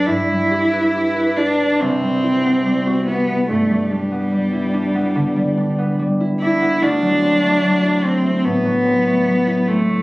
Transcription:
<<
  \new Staff \with { instrumentName = "Cello" } { \time 4/4 \key g \major \tempo 4 = 72 e'4. d'8 c'4. b8 | a8 g2~ g8 r8 e'8 | d'4. c'8 b4. a8 | }
  \new Staff \with { instrumentName = "Harp" } { \time 4/4 \key g \major <g, d' b' d''>16 g16 g'16 b'16 g'16 b'16 g'16 d'16 c,16 g16 e'16 b16 g16 fis'16 e'16 b16 | g,16 g16 d'16 b16 g16 e'16 d'16 b16 d16 g16 d'16 b16 g16 e'16 d'16 b16 | d,16 fis16 c'16 a16 fis16 e'16 c'16 a16 a,16 fis16 c'16 a16 fis16 e'16 c'16 a16 | }
>>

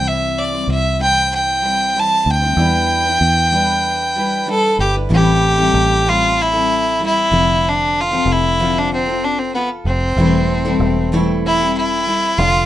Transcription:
<<
  \new Staff \with { instrumentName = "Fiddle" } { \time 4/4 \key a \minor \tempo 4 = 95 e''8 d''8 e''8 g''8 g''4 a''8 g''8~ | g''2. a'8 g'8 | g'4. f'8 e'4 e'4 | d'8 f'8 e'8. d'16 c'8 d'16 c'16 b8 c'8~ |
c'4. r8 e'8 e'4 f'8 | }
  \new Staff \with { instrumentName = "Steel-string acoustic guitar" } { \time 4/4 \key a \minor <c e g c' e' c''>8. <g c' e' c''>8. <g c' e' c''>4 <g c' e' c''>8 <g c' e' c''>8. <g c' e' c''>16 | <e g d' e' b'>8. <d' e' b'>8. <g d' e' b'>4 <g d' e' b'>8 <g d' e' b'>8. <d' e' b'>16 | <a, e g c' e' a'>8. <a, e g c' e' a'>8. <a, g c' a'>8. <g c' e' a'>8. <g c' e' a'>8 <d f c' a' c''>8~ | <d f c' a' c''>8. <d f c' a' c''>8. <d f c' f' a' c''>8. <c' f' a' c''>8. <f' a'>4 |
<e g a c' e' a'>8. <e g a c' e' a'>8. <e g a c' e' a'>8. <g c' e' a'>8. <g c' e' a'>8 <d f d' a'>8 | }
  \new Staff \with { instrumentName = "Fingered electric bass" } { \clef bass \time 4/4 \key a \minor c,4 c,2~ c,8 d,8 | e,4 e,2~ e,8 g,,8 | a,,4 a,,2~ a,,8 f,,8~ | f,,4 f,,2~ f,,8 f,,8 |
e,,4 e,,2~ e,,8 f,,8 | }
>>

